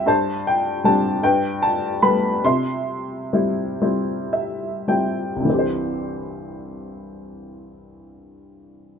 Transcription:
0, 0, Header, 1, 2, 480
1, 0, Start_track
1, 0, Key_signature, 0, "major"
1, 0, Tempo, 779221
1, 35, Time_signature, 6, 3, 24, 8
1, 995, Tempo, 817439
1, 1475, Tempo, 890208
1, 1955, Tempo, 998336
1, 2435, Tempo, 1140684
1, 2915, Tempo, 1197605
1, 4330, End_track
2, 0, Start_track
2, 0, Title_t, "Upright piano"
2, 0, Program_c, 0, 0
2, 0, Control_c, 0, 64, 127
2, 38, Note_on_c, 0, 43, 49
2, 43, Control_c, 0, 64, 0
2, 45, Note_on_c, 0, 72, 45
2, 49, Note_on_c, 0, 81, 61
2, 169, Control_c, 0, 64, 127
2, 267, Note_off_c, 0, 81, 0
2, 291, Note_on_c, 0, 79, 55
2, 519, Note_on_c, 0, 55, 37
2, 524, Note_on_c, 0, 60, 35
2, 525, Note_on_c, 0, 62, 37
2, 525, Note_on_c, 0, 81, 60
2, 531, Note_off_c, 0, 79, 0
2, 734, Note_off_c, 0, 43, 0
2, 735, Note_off_c, 0, 72, 0
2, 749, Note_off_c, 0, 55, 0
2, 751, Note_off_c, 0, 60, 0
2, 752, Note_off_c, 0, 62, 0
2, 760, Note_on_c, 0, 79, 62
2, 761, Note_on_c, 0, 43, 55
2, 762, Control_c, 0, 64, 0
2, 766, Note_off_c, 0, 81, 0
2, 768, Note_on_c, 0, 71, 45
2, 858, Control_c, 0, 64, 127
2, 1000, Note_on_c, 0, 81, 66
2, 1004, Note_off_c, 0, 79, 0
2, 1235, Note_on_c, 0, 83, 62
2, 1236, Note_on_c, 0, 55, 37
2, 1238, Note_on_c, 0, 57, 37
2, 1239, Note_on_c, 0, 59, 43
2, 1241, Note_off_c, 0, 81, 0
2, 1457, Note_off_c, 0, 43, 0
2, 1458, Note_off_c, 0, 71, 0
2, 1470, Note_off_c, 0, 55, 0
2, 1471, Note_off_c, 0, 57, 0
2, 1472, Note_off_c, 0, 59, 0
2, 1482, Control_c, 0, 64, 0
2, 1482, Note_on_c, 0, 48, 52
2, 1482, Note_on_c, 0, 84, 73
2, 1484, Note_off_c, 0, 83, 0
2, 1489, Note_on_c, 0, 76, 52
2, 1566, Control_c, 0, 64, 127
2, 1959, Note_on_c, 0, 55, 33
2, 1959, Note_on_c, 0, 60, 32
2, 1964, Note_on_c, 0, 64, 37
2, 2184, Note_off_c, 0, 55, 0
2, 2186, Note_off_c, 0, 60, 0
2, 2189, Note_off_c, 0, 64, 0
2, 2192, Note_on_c, 0, 55, 34
2, 2193, Note_on_c, 0, 60, 32
2, 2196, Note_on_c, 0, 64, 36
2, 2419, Note_off_c, 0, 84, 0
2, 2422, Note_off_c, 0, 76, 0
2, 2438, Note_on_c, 0, 76, 41
2, 2652, Note_off_c, 0, 76, 0
2, 2655, Note_off_c, 0, 55, 0
2, 2655, Note_off_c, 0, 60, 0
2, 2657, Note_off_c, 0, 64, 0
2, 2669, Note_on_c, 0, 55, 31
2, 2672, Note_on_c, 0, 60, 28
2, 2672, Note_on_c, 0, 79, 42
2, 2673, Note_on_c, 0, 64, 34
2, 2872, Note_on_c, 0, 36, 33
2, 2890, Note_on_c, 0, 43, 30
2, 2901, Note_off_c, 0, 48, 0
2, 2901, Note_off_c, 0, 79, 0
2, 2909, Note_off_c, 0, 55, 0
2, 2910, Note_on_c, 0, 52, 28
2, 2911, Note_off_c, 0, 60, 0
2, 2911, Note_off_c, 0, 64, 0
2, 2919, Control_c, 0, 64, 0
2, 2929, Note_on_c, 0, 60, 29
2, 2947, Note_on_c, 0, 67, 30
2, 2965, Note_on_c, 0, 72, 33
2, 2985, Control_c, 0, 64, 127
2, 4330, Note_off_c, 0, 36, 0
2, 4330, Note_off_c, 0, 43, 0
2, 4330, Note_off_c, 0, 52, 0
2, 4330, Note_off_c, 0, 60, 0
2, 4330, Note_off_c, 0, 67, 0
2, 4330, Note_off_c, 0, 72, 0
2, 4330, End_track
0, 0, End_of_file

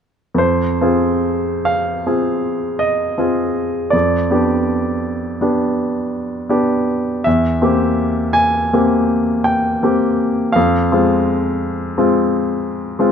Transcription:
0, 0, Header, 1, 2, 480
1, 0, Start_track
1, 0, Key_signature, -4, "minor"
1, 0, Tempo, 823045
1, 240, Time_signature, 9, 3, 24, 8
1, 1213, Tempo, 746269
1, 1693, Tempo, 738916
1, 6013, Tempo, 720288
1, 7453, Tempo, 686499
1, 8488, End_track
2, 0, Start_track
2, 0, Title_t, "Grand piano"
2, 0, Program_c, 0, 0
2, 201, Note_on_c, 0, 41, 45
2, 224, Note_on_c, 0, 72, 56
2, 343, Control_c, 0, 64, 127
2, 450, Note_off_c, 0, 41, 0
2, 474, Note_on_c, 0, 65, 34
2, 475, Note_on_c, 0, 60, 35
2, 481, Note_on_c, 0, 68, 34
2, 963, Note_on_c, 0, 77, 59
2, 973, Note_off_c, 0, 72, 0
2, 1188, Note_off_c, 0, 60, 0
2, 1188, Note_off_c, 0, 65, 0
2, 1191, Note_off_c, 0, 68, 0
2, 1205, Note_on_c, 0, 65, 30
2, 1205, Note_on_c, 0, 68, 35
2, 1207, Note_on_c, 0, 60, 31
2, 1670, Note_on_c, 0, 75, 58
2, 1683, Note_off_c, 0, 77, 0
2, 1903, Note_off_c, 0, 65, 0
2, 1903, Note_off_c, 0, 68, 0
2, 1904, Note_off_c, 0, 60, 0
2, 1922, Note_on_c, 0, 60, 30
2, 1923, Note_on_c, 0, 65, 34
2, 1931, Note_on_c, 0, 68, 35
2, 2378, Note_off_c, 0, 60, 0
2, 2378, Note_off_c, 0, 65, 0
2, 2383, Note_off_c, 0, 68, 0
2, 2393, Note_on_c, 0, 74, 56
2, 2398, Note_off_c, 0, 75, 0
2, 2409, Note_on_c, 0, 41, 43
2, 2423, Control_c, 0, 64, 0
2, 2547, Control_c, 0, 64, 127
2, 2647, Note_off_c, 0, 41, 0
2, 2654, Note_on_c, 0, 59, 35
2, 2657, Note_on_c, 0, 62, 34
2, 2661, Note_on_c, 0, 67, 38
2, 3344, Note_off_c, 0, 59, 0
2, 3346, Note_off_c, 0, 62, 0
2, 3348, Note_off_c, 0, 67, 0
2, 3371, Note_on_c, 0, 59, 33
2, 3376, Note_on_c, 0, 62, 33
2, 3378, Note_on_c, 0, 67, 34
2, 4052, Note_off_c, 0, 59, 0
2, 4054, Note_off_c, 0, 62, 0
2, 4055, Note_off_c, 0, 67, 0
2, 4075, Note_on_c, 0, 59, 36
2, 4079, Note_on_c, 0, 62, 36
2, 4081, Note_on_c, 0, 67, 39
2, 4313, Note_off_c, 0, 74, 0
2, 4542, Note_off_c, 0, 59, 0
2, 4544, Note_off_c, 0, 62, 0
2, 4545, Note_off_c, 0, 67, 0
2, 4562, Note_on_c, 0, 76, 65
2, 4575, Note_on_c, 0, 40, 46
2, 4583, Control_c, 0, 64, 0
2, 4682, Control_c, 0, 64, 127
2, 4806, Note_on_c, 0, 60, 36
2, 4807, Note_off_c, 0, 40, 0
2, 4807, Note_on_c, 0, 58, 36
2, 4810, Note_on_c, 0, 67, 40
2, 5269, Note_on_c, 0, 80, 72
2, 5288, Note_off_c, 0, 76, 0
2, 5502, Note_off_c, 0, 60, 0
2, 5503, Note_off_c, 0, 58, 0
2, 5505, Note_off_c, 0, 67, 0
2, 5530, Note_on_c, 0, 58, 35
2, 5534, Note_on_c, 0, 60, 35
2, 5534, Note_on_c, 0, 67, 39
2, 5991, Note_on_c, 0, 79, 59
2, 6001, Note_off_c, 0, 80, 0
2, 6226, Note_off_c, 0, 58, 0
2, 6228, Note_off_c, 0, 60, 0
2, 6228, Note_off_c, 0, 67, 0
2, 6248, Note_on_c, 0, 58, 36
2, 6252, Note_on_c, 0, 60, 38
2, 6255, Note_on_c, 0, 67, 39
2, 6702, Note_off_c, 0, 58, 0
2, 6704, Note_off_c, 0, 60, 0
2, 6706, Note_off_c, 0, 67, 0
2, 6712, Note_on_c, 0, 77, 65
2, 6721, Note_off_c, 0, 79, 0
2, 6733, Note_on_c, 0, 41, 54
2, 6745, Control_c, 0, 64, 0
2, 6850, Control_c, 0, 64, 127
2, 6969, Note_off_c, 0, 41, 0
2, 6975, Note_on_c, 0, 56, 40
2, 6976, Note_on_c, 0, 60, 38
2, 6978, Note_on_c, 0, 65, 42
2, 7668, Note_off_c, 0, 56, 0
2, 7668, Note_off_c, 0, 60, 0
2, 7670, Note_off_c, 0, 65, 0
2, 7690, Note_on_c, 0, 56, 38
2, 7692, Note_on_c, 0, 60, 40
2, 7696, Note_on_c, 0, 65, 41
2, 8383, Note_off_c, 0, 56, 0
2, 8384, Note_off_c, 0, 60, 0
2, 8385, Note_off_c, 0, 65, 0
2, 8399, Note_on_c, 0, 56, 40
2, 8403, Note_on_c, 0, 60, 42
2, 8407, Note_on_c, 0, 65, 45
2, 8488, Note_off_c, 0, 56, 0
2, 8488, Note_off_c, 0, 60, 0
2, 8488, Note_off_c, 0, 65, 0
2, 8488, Note_off_c, 0, 77, 0
2, 8488, End_track
0, 0, End_of_file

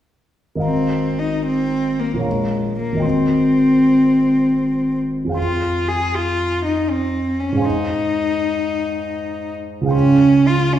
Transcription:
0, 0, Header, 1, 3, 480
1, 0, Start_track
1, 0, Key_signature, -4, "major"
1, 0, Tempo, 802139
1, 385, Time_signature, 3, 2, 24, 8
1, 1820, Tempo, 774194
1, 3740, Tempo, 753769
1, 5660, Tempo, 781250
1, 6667, End_track
2, 0, Start_track
2, 0, Title_t, "Grand piano"
2, 0, Program_c, 0, 0
2, 331, Note_on_c, 0, 32, 23
2, 331, Note_on_c, 0, 70, 20
2, 341, Note_on_c, 0, 75, 21
2, 356, Note_on_c, 0, 77, 22
2, 370, Note_on_c, 0, 82, 22
2, 504, Control_c, 0, 64, 127
2, 1278, Note_on_c, 0, 34, 24
2, 1284, Note_off_c, 0, 70, 0
2, 1293, Note_on_c, 0, 70, 20
2, 1303, Note_off_c, 0, 75, 0
2, 1308, Note_off_c, 0, 32, 0
2, 1309, Note_on_c, 0, 73, 21
2, 1311, Note_off_c, 0, 77, 0
2, 1318, Note_off_c, 0, 82, 0
2, 1322, Note_on_c, 0, 77, 18
2, 1335, Note_on_c, 0, 82, 20
2, 1360, Control_c, 0, 64, 0
2, 1450, Control_c, 0, 64, 127
2, 1749, Note_on_c, 0, 32, 28
2, 1755, Note_off_c, 0, 70, 0
2, 1764, Note_on_c, 0, 70, 21
2, 1769, Note_off_c, 0, 34, 0
2, 1777, Note_on_c, 0, 75, 21
2, 1785, Note_off_c, 0, 73, 0
2, 1791, Note_off_c, 0, 77, 0
2, 1794, Note_on_c, 0, 79, 21
2, 1798, Note_off_c, 0, 82, 0
2, 1807, Note_on_c, 0, 84, 23
2, 1829, Control_c, 0, 64, 0
2, 1942, Control_c, 0, 64, 127
2, 3186, Note_on_c, 0, 41, 27
2, 3200, Note_on_c, 0, 68, 22
2, 3201, Note_off_c, 0, 32, 0
2, 3209, Note_off_c, 0, 70, 0
2, 3216, Note_off_c, 0, 75, 0
2, 3216, Note_on_c, 0, 77, 22
2, 3221, Note_off_c, 0, 79, 0
2, 3231, Note_on_c, 0, 79, 23
2, 3232, Note_off_c, 0, 84, 0
2, 3247, Note_on_c, 0, 84, 24
2, 3273, Control_c, 0, 64, 0
2, 3390, Control_c, 0, 64, 127
2, 4623, Note_on_c, 0, 44, 33
2, 4628, Note_off_c, 0, 68, 0
2, 4636, Note_off_c, 0, 41, 0
2, 4637, Note_on_c, 0, 68, 27
2, 4642, Note_off_c, 0, 77, 0
2, 4651, Note_on_c, 0, 77, 25
2, 4659, Note_off_c, 0, 79, 0
2, 4667, Note_off_c, 0, 84, 0
2, 4668, Note_on_c, 0, 80, 26
2, 4682, Note_on_c, 0, 84, 26
2, 4712, Control_c, 0, 64, 0
2, 4809, Control_c, 0, 64, 127
2, 6064, Note_on_c, 0, 37, 35
2, 6070, Note_off_c, 0, 68, 0
2, 6077, Note_off_c, 0, 44, 0
2, 6080, Note_on_c, 0, 68, 31
2, 6084, Note_off_c, 0, 77, 0
2, 6093, Note_on_c, 0, 77, 28
2, 6098, Note_off_c, 0, 80, 0
2, 6106, Note_off_c, 0, 84, 0
2, 6108, Note_on_c, 0, 79, 31
2, 6123, Note_on_c, 0, 84, 29
2, 6151, Control_c, 0, 64, 0
2, 6261, Control_c, 0, 64, 127
2, 6667, Note_off_c, 0, 37, 0
2, 6667, Note_off_c, 0, 68, 0
2, 6667, Note_off_c, 0, 77, 0
2, 6667, Note_off_c, 0, 79, 0
2, 6667, Note_off_c, 0, 84, 0
2, 6667, End_track
3, 0, Start_track
3, 0, Title_t, "Cello"
3, 0, Program_c, 1, 42
3, 384, Note_on_c, 1, 60, 39
3, 713, Note_on_c, 1, 63, 35
3, 722, Note_off_c, 1, 60, 0
3, 870, Note_off_c, 1, 63, 0
3, 873, Note_on_c, 1, 60, 44
3, 1192, Note_on_c, 1, 58, 34
3, 1201, Note_off_c, 1, 60, 0
3, 1348, Note_off_c, 1, 58, 0
3, 1351, Note_on_c, 1, 56, 33
3, 1659, Note_off_c, 1, 56, 0
3, 1670, Note_on_c, 1, 58, 38
3, 1826, Note_on_c, 1, 60, 44
3, 1835, Note_off_c, 1, 58, 0
3, 3024, Note_off_c, 1, 60, 0
3, 3269, Note_on_c, 1, 65, 42
3, 3581, Note_on_c, 1, 68, 46
3, 3590, Note_off_c, 1, 65, 0
3, 3745, Note_on_c, 1, 65, 51
3, 3754, Note_off_c, 1, 68, 0
3, 4060, Note_off_c, 1, 65, 0
3, 4066, Note_on_c, 1, 63, 39
3, 4222, Note_on_c, 1, 60, 42
3, 4232, Note_off_c, 1, 63, 0
3, 4540, Note_on_c, 1, 61, 39
3, 4550, Note_off_c, 1, 60, 0
3, 4702, Note_on_c, 1, 63, 48
3, 4712, Note_off_c, 1, 61, 0
3, 5899, Note_off_c, 1, 63, 0
3, 6138, Note_on_c, 1, 61, 60
3, 6465, Note_on_c, 1, 65, 54
3, 6474, Note_off_c, 1, 61, 0
3, 6625, Note_on_c, 1, 61, 59
3, 6634, Note_off_c, 1, 65, 0
3, 6667, Note_off_c, 1, 61, 0
3, 6667, End_track
0, 0, End_of_file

